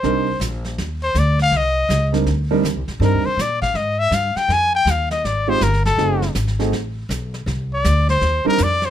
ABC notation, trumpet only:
X:1
M:4/4
L:1/8
Q:"Swing" 1/4=162
K:Cm
V:1 name="Trumpet"
c2 z3 c d f | e3 z4 z | B c d f e =e f g | a g f e d c B =A- |
=A2 z6 | z d2 c2 B d c |]